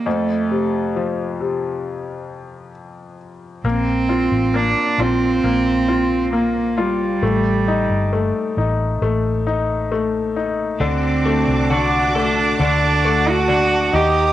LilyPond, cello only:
\new Staff \with { instrumentName = "Cello" } { \time 4/4 \key bes \major \tempo 4 = 67 a4 r2. | c'4 d'8 c'4. bes8 g8~ | g4. r2 r8 | c'4 d'8 d'8 d'8. fis'8. g'8 | }